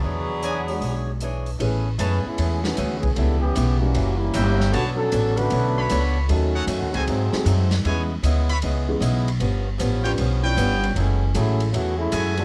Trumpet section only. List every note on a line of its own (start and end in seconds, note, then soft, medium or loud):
0.43 0.60 F#4 medium
0.43 0.61 C#5 medium
0.43 0.60 D5 medium
0.43 0.61 G#5 medium
1.99 2.17 G#4 medium
1.99 2.16 B4 medium
1.99 2.17 C#5 medium
1.99 2.17 A5 medium
4.35 4.73 F#4 medium
4.35 4.73 A#4 medium
4.35 4.73 E5 medium
4.35 4.74 G5 loud
4.72 4.90 D4 medium
4.72 4.90 B4 medium
4.72 4.90 C#5 medium
4.72 4.90 A5 loud
5.77 6.27 D4 medium
5.77 6.27 B4 medium
5.77 6.27 C#5 medium
5.77 6.27 B5 medium
6.56 6.64 D#4 medium
6.56 6.64 A4 medium
6.56 6.64 C#5 medium
6.56 6.64 F#5 loud
6.94 7.03 F#4 medium
6.94 7.03 A4 medium
6.94 7.03 C5 medium
6.94 7.03 G#5 loud
7.85 8.02 E4 medium
7.85 8.02 B4 medium
7.85 8.02 C#5 medium
7.85 8.02 G#5 medium
8.49 8.58 E4 medium
8.49 8.58 B4 medium
8.49 8.58 C#5 medium
8.49 8.58 B5 loud
10.03 10.13 F4 medium
10.03 10.13 B4 medium
10.03 10.13 C#5 medium
10.03 10.13 G5 loud
10.43 10.93 B4 medium
10.43 10.93 C#5 medium
10.43 10.93 G5 loud
12.12 12.45 F#4 medium
12.12 12.45 A4 medium
12.12 12.45 E5 medium
12.12 12.45 G#5 loud